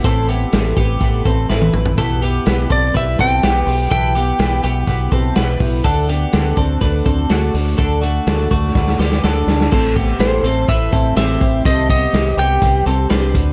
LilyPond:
<<
  \new Staff \with { instrumentName = "Lead electric guitar" } { \time 4/4 \key a \dorian \tempo 4 = 124 r1 | r4. d''8 e''8 g''4. | g''2.~ g''8 r8 | r1 |
r1 | r4 c''4 e''4 e''4 | ees''8 ees''4 g''4 r4. | }
  \new Staff \with { instrumentName = "Clean electric guitar" } { \time 4/4 \key a \dorian <c' a'>8 <b g'>4 <b g'>4 <c' a'>8 <e' b'>4 | <e' a'>8 <b g'>4 <c' a'>8 <e' b'>8 <c' a'>8 <b g'>4 | <e' a'>8 <b g'>4 <b g'>4 <c' a'>8 <e' b'>4 | <d' a'>8 <b g'>4 <c' a'>8 <d' b'>8 <c' a'>8 <a fis'>4 |
<d' a'>8 <a fis'>4 <a fis'>4 <b g'>8 <d' a'>4 | <c' a'>8 <b g'>4 <c' a'>8 <e' b'>8 <c' a'>8 <c' g'>4 | <c' a'>8 <b g'>4 <b g'>4 <c' a'>8 <d' b'>4 | }
  \new Staff \with { instrumentName = "Twelve-string acoustic guitar" } { \time 4/4 \key a \dorian <a, e a c' e' b'>8 <a c' e' b'>8 <a, e a c' e' b'>8 <a c' e' b'>8 <a c' e' b'>8 <a c' e' b'>8 <a, e a c' e' b'>8 <a c' e' b'>8 | <b, e b e' g' b'>8 <b e' g' b'>8 <b, e b e' g' b'>8 <b e' g' b'>8 <b e' g' b'>8 <b e' g' b'>8 <b, e b e' g' b'>8 <b e' g' b'>8 | <b, e b e' g' b'>8 <b e' g' b'>8 <b, e b e' g' b'>8 <b e' g' b'>8 <b e' g' b'>8 <b e' g' b'>8 <b, e b e' g' b'>8 <b e' g' b'>8 | <d a d' fis' d''>8 <d' fis' d''>8 <d a d' fis' d''>8 <d' fis' d''>8 <a d' fis' d''>8 <d' fis' d''>8 <d a d' fis' d''>8 <d' fis' d''>8 |
<d a d' fis' d''>8 <d' fis' d''>8 <d a d' fis' d''>8 <d' fis' d''>8 <a d' fis' d''>8 <d' fis' d''>8 <d a d' fis' d''>8 <d' fis' d''>8 | <a, e a c' e' c''>8 <a c' e' c''>8 <a, e a c' e' c''>8 <a c' e' c''>8 <a c' e' c''>8 <a c' e' c''>8 <a, e a c' e' c''>8 <a c' e' c''>8 | <c ees g c' g' c''>8 <g c' g' c''>8 <c ees g c' g' c''>8 <g c' g' c''>8 <g c' g' c''>8 <g c' g' c''>8 <c ees g c' g' c''>8 <c' fis' c''>8 | }
  \new Staff \with { instrumentName = "Fingered electric bass" } { \clef bass \time 4/4 \key a \dorian a,,4 a,,8 a,,8 a,,8 a,,8 a,,8 a,,8 | b,,4 b,,8 b,,8 b,,8 b,,8 b,,8 b,,8 | b,,4 b,,8 b,,8 b,,8 b,,8 b,,8 b,,8 | d,4 d,8 d,8 d,8 d,8 d,8 d,8 |
d,4 d,8 d,8 d,8 d,8 d,8 d,8 | a,,4 a,,8 a,,8 a,,8 a,,8 a,,8 a,,8 | c,4 c,8 c,8 c,8 c,8 c,8 d,8 | }
  \new DrumStaff \with { instrumentName = "Drums" } \drummode { \time 4/4 <hh bd>8 hh8 <hh sn>8 <hh bd>8 <hh bd>8 <hh bd>8 sn16 tommh16 toml16 tomfh16 | <hh bd>8 hh8 <hh sn>8 <hh bd>8 <hh bd>8 <hh bd>8 <hh sn>8 hho8 | <hh bd>8 hh8 <hh sn>8 hh8 <hh bd>8 <hh bd>8 <hh sn>8 <hho bd>8 | <hh bd>8 hh8 <hh sn>8 <hh bd>8 <hh bd>8 <hh bd>8 <hh sn>8 hho8 |
<hh bd>8 hh8 <hh sn>8 <hh bd>8 <bd sn>16 sn16 sn16 sn16 sn8 sn16 sn16 | <cymc bd>8 <hh bd>8 <hh sn>8 hh8 <hh bd>8 <hh bd>8 <hh sn>8 <hh bd>8 | <hh bd>8 <hh bd>8 <hh sn>8 hh8 <hh bd>8 hh8 <hh sn>8 <hh bd>8 | }
>>